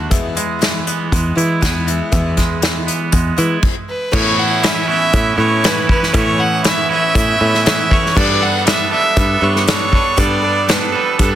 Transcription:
Already playing: picked electric bass D#2, clean electric guitar D3 A3 D4 F#4, twelve-string acoustic guitar A3 D4 F#4
0.10 clean electric guitar E2, picked electric bass E2, twelve-string acoustic guitar B2 E3 G#3 B3 E4, reed electric piano G#4 B4 E5, kick, closed hi-hat
0.35 twelve-string acoustic guitar E3 B3 E4, clean electric guitar G#3, closed hi-hat
0.61 clean electric guitar E3, twelve-string acoustic guitar G#3 B3 E4, snare, closed hi-hat
0.87 clean electric guitar B3, closed hi-hat
1.12 picked electric bass E2, clean electric guitar G#3, kick, closed hi-hat
1.37 picked electric bass E3, twelve-string acoustic guitar E3 G#3 B3, clean electric guitar E4, closed hi-hat
1.61 picked electric bass E2, twelve-string acoustic guitar E3 G#3 E4, clean electric guitar B3, kick, snare, closed hi-hat
1.86 clean electric guitar E3, twelve-string acoustic guitar G#3 B3 E4, closed hi-hat
2.11 clean electric guitar E2, picked electric bass E2, twelve-string acoustic guitar B2 E3 G#3 B3 E4, reed electric piano G#4 B4 E5, kick, closed hi-hat
2.37 twelve-string acoustic guitar E3 B3 E4, clean electric guitar G#3, kick, snare, closed hi-hat
2.62 clean electric guitar E3, twelve-string acoustic guitar G#3 B3, snare, closed hi-hat
2.66 twelve-string acoustic guitar E4
2.87 clean electric guitar B3, closed hi-hat
3.12 picked electric bass E2, clean electric guitar G#3, kick, closed hi-hat
3.38 picked electric bass E3, twelve-string acoustic guitar E3 G#3 B3, clean electric guitar E4, closed hi-hat
3.63 kick, crash
3.89 fiddle B4
4.12 clean electric guitar A2 E3 B3 C#4 E4, picked electric bass A2, reed electric piano A4 B4 C#5, fiddle C#5, kick, crash
4.37 clean electric guitar B3 C#4 E4, fiddle F#5
4.62 clean electric guitar E3 B3 C#4 E4, fiddle E5, snare, closed hi-hat
4.87 clean electric guitar A2 E3 B3 C#4 E4, fiddle E5
5.12 picked electric bass A2, clean electric guitar E3 B3 C#4 E4, kick, closed hi-hat
5.37 picked electric bass A2, clean electric guitar A2 E3 B3 C#4 E4, fiddle C#5
5.63 clean electric guitar E3 B3 C#4 E4, fiddle B4, snare, closed hi-hat
5.87 clean electric guitar B3 C#4 E4, kick
5.91 fiddle B4
6.03 snare
6.12 clean electric guitar A2 E3 B3 C#4 E4, picked electric bass A2, reed electric piano A4 B4 C#5, kick, closed hi-hat
6.16 fiddle C#5
6.38 clean electric guitar B3 C#4 E4, fiddle F#5
6.63 clean electric guitar E3 B3 C#4 E4, fiddle E5, snare, closed hi-hat
6.89 clean electric guitar A2 E3 B3 C#4 E4, fiddle E5
7.14 picked electric bass A2, clean electric guitar E3 C#4 E4, kick, closed hi-hat
7.39 picked electric bass A2, clean electric guitar A2 E3 B3 C#4 E4
7.54 snare
7.65 clean electric guitar E3 B3 C#4 E4, snare, closed hi-hat
7.90 clean electric guitar B3 C#4 E4, reed electric piano A4 B4 C#5, fiddle C#5, kick
8.06 snare
8.16 picked electric bass G2, clean electric guitar G3 B3 D4 A4, reed electric piano G4 A4 B4, fiddle D5, kick, crash
8.41 clean electric guitar B3 D4 A4, fiddle F#5
8.65 clean electric guitar G3 B3 D4 A4, fiddle E5, snare, closed hi-hat
8.91 clean electric guitar G3 B3 D4 A4, fiddle E5
9.16 picked electric bass G2, clean electric guitar G3 B3 D4 A4, kick, closed hi-hat
9.41 picked electric bass G2, clean electric guitar G3 B3 D4 A4, fiddle C#5
9.56 snare
9.66 clean electric guitar G3 B3 D4 A4, fiddle C#5, snare, closed hi-hat
9.92 clean electric guitar B3 D4 A4, kick
10.17 picked electric bass G2, clean electric guitar G3 B3 D4 A4, reed electric piano G4 A4 B4, fiddle D5, kick, closed hi-hat
10.42 clean electric guitar B3 D4 A4
10.67 clean electric guitar G3 B3 D4 A4, fiddle B4, snare, closed hi-hat
10.92 clean electric guitar G3 B3 D4 A4
11.18 picked electric bass G2, clean electric guitar G3 B3 D4 A4, fiddle A4, kick, closed hi-hat

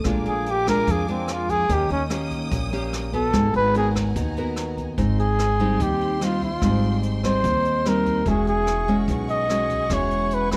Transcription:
0.04 upright bass A#1, nylon-string guitar A#2 G#3 D4 F4, string section A#4 G#5 D6, kick, cross-stick, closed hi-hat
0.25 upright bass A#1, flugelhorn G#4, closed hi-hat
0.46 closed hi-hat
0.51 flugelhorn G4
0.67 nylon-string guitar G#3 D4 F4, flugelhorn A#4, kick, cross-stick, closed hi-hat
0.87 upright bass F2, nylon-string guitar F3, flugelhorn G#4, kick, closed hi-hat
1.08 nylon-string guitar G#3 D4 F4, flugelhorn C4, closed hi-hat
1.28 cross-stick, closed hi-hat
1.32 flugelhorn F4
1.49 flugelhorn G#4, kick, closed hi-hat
1.69 upright bass D#2, nylon-string guitar D#3 A#3 C#4 G4, flugelhorn G4, string section C#5 G5 D#6, kick, closed hi-hat
1.90 upright bass D#2, flugelhorn C#4, closed hi-hat
2.10 nylon-string guitar A#3 C#4 G4, cross-stick, closed hi-hat
2.31 kick, closed hi-hat
2.51 upright bass A#1, nylon-string guitar A#2, kick, closed hi-hat
2.73 nylon-string guitar A#3 C#4 G4, closed hi-hat
2.93 cross-stick, closed hi-hat
3.13 nylon-string guitar B3 F#4, flugelhorn A4, kick, closed hi-hat
3.33 upright bass G#1, nylon-string guitar G#3, string section F#5 G#5 A#5, kick, cross-stick, closed hi-hat
3.54 upright bass G#1, flugelhorn B4, closed hi-hat
3.74 nylon-string guitar B3 F#4 A#4, flugelhorn G#4, closed hi-hat
3.95 kick, cross-stick, closed hi-hat
4.16 upright bass D#2, nylon-string guitar D#3, kick, closed hi-hat
4.37 nylon-string guitar B3 F#4 A#4, closed hi-hat
4.56 cross-stick, closed hi-hat
4.77 kick, closed hi-hat
4.97 upright bass G#1, nylon-string guitar G#2 C4 D#4, string section C5 G5 C6, kick, closed hi-hat
5.19 flugelhorn G#4, closed hi-hat
5.39 cross-stick, closed hi-hat
5.59 nylon-string guitar G3 C4 D#4, kick, closed hi-hat
5.80 upright bass D#2, nylon-string guitar D#3, flugelhorn G4, kick, closed hi-hat
6.01 closed hi-hat
6.21 nylon-string guitar G3 C4 D#4, flugelhorn F4, cross-stick, closed hi-hat
6.41 flugelhorn F4, kick, closed hi-hat
6.62 upright bass G#1, nylon-string guitar G#2 G3 C4 D#4, kick, cross-stick, closed hi-hat
6.83 closed hi-hat
7.03 closed hi-hat
7.23 nylon-string guitar G3 C4 D#4, flugelhorn C5, kick, cross-stick, closed hi-hat
7.44 upright bass D#2, nylon-string guitar D#3, kick, closed hi-hat
7.65 closed hi-hat
7.85 nylon-string guitar G3 C4 D#4, flugelhorn A#4, cross-stick, closed hi-hat
8.05 kick, closed hi-hat
8.25 upright bass E1, nylon-string guitar E3 G#3 C#4 F#4, string section G#4 F#5 C#6, kick, closed hi-hat
8.29 flugelhorn G#4
8.47 flugelhorn G#4, closed hi-hat
8.67 cross-stick, closed hi-hat
8.87 nylon-string guitar G#3 C#4 F#4, kick, closed hi-hat
9.08 upright bass B1, nylon-string guitar B2, kick, closed hi-hat
9.29 flugelhorn D#5, closed hi-hat
9.49 nylon-string guitar G#3 C#4 F#4, cross-stick, closed hi-hat
9.69 kick, closed hi-hat
9.90 upright bass E1, nylon-string guitar E3 G#3 C#4 F#4, kick, cross-stick, closed hi-hat
9.94 flugelhorn C#5
10.11 closed hi-hat
10.31 flugelhorn B4, closed hi-hat
10.51 nylon-string guitar G#3 C#4 F#4, flugelhorn B4, kick, cross-stick, closed hi-hat

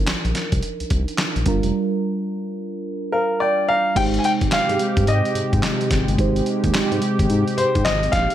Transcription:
Already playing: fm electric piano F3 D4 D#4 A#4
0.07 analog synth bass A#1, snare, clap, closed hi-hat
0.25 analog synth bass A#1, closed hi-hat
0.35 snare, closed hi-hat
0.52 analog synth bass C2, kick, closed hi-hat
0.63 closed hi-hat
0.80 analog synth bass C2, closed hi-hat
0.90 analog synth bass C2, kick, closed hi-hat
1.08 closed hi-hat
1.18 snare, clap, closed hi-hat
1.36 analog synth bass A#1, closed hi-hat
1.46 analog synth bass G1, fm electric piano G3 D4 F4 A#4, kick, closed hi-hat
1.63 analog synth bass F1, closed hi-hat
3.12 grand piano A#4, fm electric piano F5
3.40 grand piano D5, fm electric piano G5
3.69 grand piano F5, fm electric piano A#5
3.95 analog synth bass G#1, analog synth pad C3 G#3 G4, fm electric piano G#3 D#4 G4 C5, grand piano G5, kick, closed hi-hat, crash
4.14 closed hi-hat
4.19 grand piano G#5
4.24 grand piano G5, closed hi-hat
4.41 analog synth bass G#1, kick, closed hi-hat
4.52 analog synth bass G#2, grand piano F5, snare, clap, closed hi-hat
4.69 analog synth bass G#2, closed hi-hat
4.79 closed hi-hat
4.97 analog synth bass G2, kick, closed hi-hat
5.07 analog synth bass G#2, grand piano D#5, closed hi-hat
5.25 closed hi-hat
5.35 analog synth bass G#2, closed hi-hat
5.53 analog synth bass G#2, kick, closed hi-hat
5.63 snare, clap, closed hi-hat
5.81 closed hi-hat
5.91 analog synth bass G#1, kick, snare, closed hi-hat
6.08 analog synth bass G1, closed hi-hat
6.18 analog synth bass G#1, fm electric piano G#3 D#4 G4 C5, analog synth pad G4, kick, closed hi-hat
6.36 closed hi-hat
6.46 closed hi-hat
6.64 analog synth bass D#2, kick, closed hi-hat
6.74 analog synth bass G#2, snare, clap, closed hi-hat
6.92 analog synth bass G#2, closed hi-hat
7.02 closed hi-hat
7.19 analog synth bass G#1, kick, closed hi-hat
7.30 analog synth bass G#2, closed hi-hat
7.48 closed hi-hat
7.58 analog synth bass G#2, grand piano C5, closed hi-hat
7.75 analog synth bass G#2, kick, closed hi-hat
7.85 analog synth bass G#1, grand piano D#5, snare, clap, closed hi-hat
8.03 closed hi-hat
8.12 analog synth bass A#1, grand piano F5, kick, snare, closed hi-hat
8.30 closed hi-hat

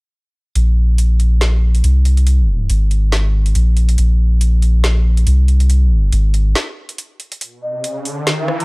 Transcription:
0.55 sub bass A#1, closed hi-hat
0.98 closed hi-hat
1.20 closed hi-hat
1.41 snare, closed hi-hat
1.75 closed hi-hat
1.84 sub bass C2, closed hi-hat
2.05 closed hi-hat
2.17 closed hi-hat
2.27 closed hi-hat
2.70 sub bass G#1, closed hi-hat
2.91 closed hi-hat
3.12 snare, closed hi-hat
3.46 closed hi-hat
3.55 sub bass A#1, closed hi-hat
3.77 closed hi-hat
3.89 closed hi-hat
3.98 sub bass A#1, closed hi-hat
4.41 closed hi-hat
4.62 closed hi-hat
4.84 snare, closed hi-hat
5.17 closed hi-hat
5.27 sub bass C2, closed hi-hat
5.48 closed hi-hat
5.60 closed hi-hat
5.70 closed hi-hat
6.12 sub bass G#1, closed hi-hat
6.34 closed hi-hat
6.55 snare, closed hi-hat
6.89 closed hi-hat
6.98 closed hi-hat
7.20 closed hi-hat
7.32 closed hi-hat
7.41 closed hi-hat, riser
7.63 shakuhachi D#5
7.84 closed hi-hat
8.05 open hi-hat
8.27 snare, closed hi-hat
8.39 shakuhachi F5
8.48 cross-stick
8.60 shakuhachi A#5, closed hi-hat

